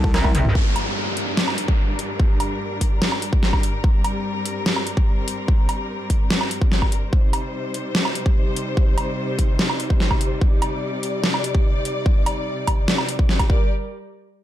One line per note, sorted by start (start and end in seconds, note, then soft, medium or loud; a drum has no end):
0.00 0.12 C2 loud
0.00 0.51 C3 medium
0.00 0.51 D#3 medium
0.00 0.51 C4 medium
0.00 0.51 G4 loud
0.00 kick loud
0.14 0.33 C2 medium
0.14 0.39 A#4 medium
0.14 0.39 A#5 medium
0.14 snare medium
0.14 ride soft
0.24 kick medium
0.24 high tom medium
0.24 low woodblock medium
0.35 0.53 C2 loud
0.35 closed hi-hat medium
0.35 mid tom medium
0.45 mid tom medium
0.55 7.09 G2 medium
0.55 7.09 G3 medium
0.55 3.81 D4 medium
0.55 7.09 A#4 medium
0.55 kick loud
0.55 downlifter medium
0.76 closed hi-hat medium
0.76 low woodblock medium
1.17 closed hi-hat medium
1.37 snare loud
1.48 low woodblock medium
1.58 closed hi-hat medium
1.68 kick loud
1.99 closed hi-hat medium
2.20 kick loud
2.40 closed hi-hat medium
2.40 low woodblock medium
2.81 kick medium
2.81 closed hi-hat medium
3.02 snare loud
3.12 low woodblock medium
3.22 closed hi-hat medium
3.33 kick loud
3.43 snare medium
3.53 kick medium
3.53 low woodblock medium
3.63 closed hi-hat medium
3.84 7.09 C4 medium
3.84 kick loud
4.04 closed hi-hat medium
4.04 low woodblock medium
4.46 closed hi-hat medium
4.66 snare loud
4.76 low woodblock soft
4.87 closed hi-hat medium
4.97 kick loud
5.28 closed hi-hat medium
5.48 kick loud
5.69 closed hi-hat medium
5.69 low woodblock medium
6.10 kick medium
6.10 closed hi-hat medium
6.30 snare loud
6.41 low woodblock medium
6.51 closed hi-hat medium
6.61 kick loud
6.72 snare medium
6.82 kick medium
6.82 low woodblock soft
6.92 closed hi-hat medium
7.13 13.46 C3 medium
7.13 13.46 G3 medium
7.13 13.46 D#4 medium
7.13 10.38 C5 medium
7.13 kick loud
7.33 closed hi-hat medium
7.33 low woodblock medium
7.74 closed hi-hat medium
7.95 snare loud
8.05 low woodblock medium
8.15 closed hi-hat medium
8.26 kick loud
8.56 closed hi-hat medium
8.77 kick loud
8.98 closed hi-hat medium
8.98 low woodblock medium
9.39 kick medium
9.39 closed hi-hat medium
9.59 snare loud
9.70 low woodblock medium
9.80 closed hi-hat medium
9.90 kick loud
10.00 snare medium
10.11 kick medium
10.11 low woodblock medium
10.21 closed hi-hat medium
10.41 13.47 D5 medium
10.41 kick loud
10.62 closed hi-hat medium
10.62 low woodblock medium
11.03 closed hi-hat medium
11.24 snare loud
11.34 low woodblock medium
11.44 closed hi-hat medium
11.55 kick loud
11.85 closed hi-hat medium
12.06 kick loud
12.26 closed hi-hat medium
12.26 low woodblock medium
12.67 kick medium
12.67 closed hi-hat medium
12.67 low woodblock medium
12.88 snare loud
12.98 low woodblock medium
13.09 closed hi-hat medium
13.19 kick loud
13.29 snare medium
13.39 kick medium
13.39 closed hi-hat soft
13.39 low woodblock medium
13.50 13.69 G3 medium
13.50 13.69 G4 medium
13.50 13.69 A#4 medium
13.50 13.69 D5 medium
13.50 kick loud